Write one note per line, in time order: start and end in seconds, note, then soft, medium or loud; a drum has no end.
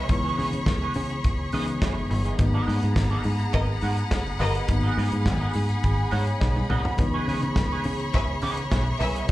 0.00 9.32 G#4 medium
0.00 2.35 C#5 medium
0.00 2.35 B5 medium
0.00 2.35 C#6 medium
0.08 0.29 C#2 loud
0.08 1.49 E3 medium
0.08 1.50 G#3 medium
0.08 1.50 B3 medium
0.08 1.51 E4 medium
0.08 kick loud
0.08 closed hi-hat medium
0.24 0.36 B3 medium
0.24 0.36 E4 medium
0.24 0.37 G#4 medium
0.24 0.37 C#5 medium
0.37 0.49 C#3 medium
0.37 0.49 B3 medium
0.37 0.49 E4 medium
0.37 0.49 G#4 medium
0.37 0.49 C#5 medium
0.37 open hi-hat medium
0.53 0.63 C#3 medium
0.53 muted clean electric guitar stroke soft
0.53 closed hi-hat soft
0.66 0.87 C#2 loud
0.66 muted clean electric guitar stroke soft
0.66 kick loud
0.66 snare loud
0.66 closed hi-hat medium
0.82 0.94 B3 medium
0.82 0.94 E4 medium
0.82 0.94 G#4 medium
0.82 0.94 C#5 medium
0.94 1.16 C#3 loud
0.94 open hi-hat medium
1.10 muted clean electric guitar stroke medium
1.10 closed hi-hat soft
1.24 1.44 C#2 loud
1.24 kick loud
1.24 closed hi-hat medium
1.39 muted clean electric guitar stroke medium
1.52 1.73 C#3 medium
1.52 2.39 E3 medium
1.52 2.39 G#3 medium
1.52 1.67 B3 medium
1.52 2.39 B3 medium
1.52 2.40 D#4 medium
1.52 1.67 E4 medium
1.52 1.67 G#4 loud
1.52 1.68 D#5 loud
1.52 open hi-hat medium
1.68 muted clean electric guitar stroke soft
1.68 closed hi-hat medium
1.81 2.02 F#1 loud
1.81 1.95 B3 medium
1.81 1.96 E4 loud
1.81 1.96 G#4 loud
1.81 1.96 C#5 loud
1.81 kick loud
1.81 snare loud
1.81 closed hi-hat medium
1.97 muted clean electric guitar stroke medium
2.10 2.31 G1 loud
2.10 muted clean electric guitar stroke soft
2.10 open hi-hat medium
2.25 2.36 B3 medium
2.25 2.36 E4 medium
2.25 2.35 G#4 medium
2.25 2.35 D#5 medium
2.25 closed hi-hat medium
2.38 2.59 G#1 loud
2.38 4.64 F#3 medium
2.38 4.65 A#3 medium
2.38 4.65 B3 medium
2.38 4.66 D#4 medium
2.38 6.95 F#5 medium
2.38 4.66 A#5 medium
2.38 9.32 B5 medium
2.38 muted clean electric guitar stroke medium
2.38 kick loud
2.38 closed hi-hat medium
2.54 2.65 B3 medium
2.54 2.66 F#4 medium
2.54 2.66 A#4 medium
2.54 2.67 D#5 medium
2.67 2.78 G#2 loud
2.67 2.78 B3 medium
2.67 2.78 F#4 medium
2.67 2.79 A#4 medium
2.67 2.79 D#5 medium
2.67 open hi-hat medium
2.83 2.93 G#2 medium
2.83 muted clean electric guitar stroke soft
2.83 closed hi-hat soft
2.96 3.16 G#1 loud
2.96 muted clean electric guitar stroke soft
2.96 kick loud
2.96 snare loud
2.96 closed hi-hat medium
3.11 3.24 B3 medium
3.11 3.24 F#4 medium
3.11 3.24 A#4 medium
3.11 3.24 D#5 medium
3.24 3.45 G#2 loud
3.24 open hi-hat medium
3.39 muted clean electric guitar stroke soft
3.39 closed hi-hat soft
3.53 3.74 G#1 loud
3.53 3.66 B3 loud
3.53 3.67 A#4 loud
3.53 3.66 D#5 loud
3.53 kick loud
3.53 closed hi-hat medium
3.69 muted clean electric guitar stroke medium
3.81 4.03 G#2 medium
3.81 3.97 B3 medium
3.81 3.97 F#4 medium
3.81 3.97 A#4 medium
3.81 3.97 F#5 medium
3.81 open hi-hat medium
3.97 muted clean electric guitar stroke medium
3.97 closed hi-hat medium
4.11 4.31 F#1 loud
4.11 kick loud
4.11 snare loud
4.11 closed hi-hat medium
4.26 muted clean electric guitar stroke soft
4.39 4.60 G1 loud
4.39 4.54 B3 medium
4.39 4.64 B3 loud
4.39 4.54 F#4 medium
4.39 4.65 A#4 loud
4.39 4.54 A#4 medium
4.39 4.64 D#5 loud
4.39 4.54 D#5 medium
4.39 open hi-hat medium
4.55 muted clean electric guitar stroke soft
4.55 closed hi-hat medium
4.68 4.89 G#1 loud
4.68 6.94 F#3 medium
4.68 6.95 A#3 medium
4.68 6.95 B3 medium
4.68 6.96 D#4 medium
4.68 6.97 G#5 medium
4.68 muted clean electric guitar stroke soft
4.68 kick loud
4.68 closed hi-hat medium
4.83 4.96 B3 medium
4.83 4.96 F#4 medium
4.83 4.96 A#4 medium
4.83 4.96 D#5 medium
4.97 5.08 G#2 loud
4.97 5.08 B3 medium
4.97 5.08 F#4 medium
4.97 5.09 A#4 medium
4.97 5.09 D#5 medium
4.97 open hi-hat medium
5.12 5.27 G#2 medium
5.12 closed hi-hat soft
5.25 5.46 G#1 loud
5.25 muted clean electric guitar stroke soft
5.25 kick loud
5.25 snare loud
5.25 closed hi-hat medium
5.40 5.53 B3 medium
5.40 5.53 F#4 medium
5.40 5.54 A#4 medium
5.40 5.53 D#5 medium
5.54 5.75 G#2 loud
5.54 muted clean electric guitar stroke soft
5.54 open hi-hat medium
5.69 muted clean electric guitar stroke soft
5.69 closed hi-hat soft
5.83 6.04 G#1 medium
5.83 kick loud
5.83 closed hi-hat soft
5.97 muted clean electric guitar stroke soft
6.11 6.33 G#2 medium
6.11 6.26 B3 medium
6.11 6.26 F#4 loud
6.11 6.26 A#4 medium
6.11 6.39 C#5 medium
6.11 6.26 F#5 medium
6.11 open hi-hat medium
6.27 muted clean electric guitar stroke soft
6.27 closed hi-hat soft
6.40 6.62 B1 loud
6.40 6.68 D#5 medium
6.40 muted clean electric guitar stroke soft
6.40 kick loud
6.40 snare medium
6.56 muted clean electric guitar stroke medium
6.56 high tom medium
6.69 6.90 C2 loud
6.69 6.84 B3 medium
6.69 6.84 F#4 medium
6.69 6.84 A#4 medium
6.69 6.84 D#5 loud
6.69 6.97 F#5 medium
6.69 mid tom loud
6.84 6.95 B3 soft
6.84 6.95 F#4 medium
6.84 6.95 A#4 medium
6.84 6.95 F#5 medium
6.84 floor tom loud
6.97 7.19 C#2 loud
6.97 9.24 E3 medium
6.97 9.25 G#3 medium
6.97 9.25 B3 medium
6.97 9.26 D#4 medium
6.97 9.32 C#5 medium
6.97 9.32 C#6 medium
6.97 kick loud
6.97 closed hi-hat medium
7.14 7.27 B3 medium
7.14 7.27 E4 medium
7.14 7.27 G#4 medium
7.14 7.27 C#5 medium
7.28 7.38 C#3 loud
7.28 7.39 B3 medium
7.28 7.39 E4 medium
7.28 7.39 G#4 medium
7.28 7.39 C#5 medium
7.28 open hi-hat medium
7.42 7.52 C#3 loud
7.42 muted clean electric guitar stroke soft
7.42 closed hi-hat soft
7.56 7.76 C#2 loud
7.56 muted clean electric guitar stroke soft
7.56 kick loud
7.56 snare loud
7.56 closed hi-hat medium
7.72 7.84 B3 medium
7.72 7.84 E4 medium
7.72 7.85 G#4 medium
7.72 7.84 C#5 medium
7.84 8.05 C#3 loud
7.84 open hi-hat medium
7.99 muted clean electric guitar stroke soft
7.99 closed hi-hat soft
8.14 8.34 C#2 loud
8.14 8.27 C#4 loud
8.14 8.27 B4 loud
8.14 8.27 E5 loud
8.14 kick loud
8.14 closed hi-hat medium
8.29 muted clean electric guitar stroke soft
8.42 8.63 C#3 medium
8.42 8.63 B3 medium
8.42 8.58 E4 medium
8.42 8.57 G#4 medium
8.42 8.58 D#5 loud
8.42 open hi-hat medium
8.57 muted clean electric guitar stroke soft
8.57 closed hi-hat medium
8.71 8.92 B1 medium
8.71 8.85 B3 medium
8.71 8.85 E4 medium
8.71 8.86 G#4 medium
8.71 8.85 C#5 medium
8.71 kick loud
8.71 snare loud
8.71 closed hi-hat medium
8.87 muted clean electric guitar stroke soft
9.00 9.20 C2 loud
9.00 9.25 C#4 loud
9.00 9.25 B4 medium
9.00 9.25 E5 loud
9.00 muted clean electric guitar stroke soft
9.00 open hi-hat medium
9.15 9.26 B3 medium
9.15 9.25 E4 medium
9.15 9.25 G#4 medium
9.15 9.25 D#5 medium
9.15 closed hi-hat medium
9.28 9.32 E3 medium
9.28 9.32 G#3 medium
9.28 closed hi-hat medium